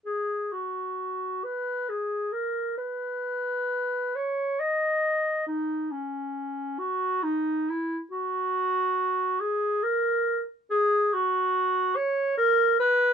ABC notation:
X:1
M:3/4
L:1/8
Q:1/4=68
K:B
V:1 name="Clarinet"
G F2 B G A | B3 c d2 | D C2 F D E | F3 G A z |
[K:F#] G F2 c A B |]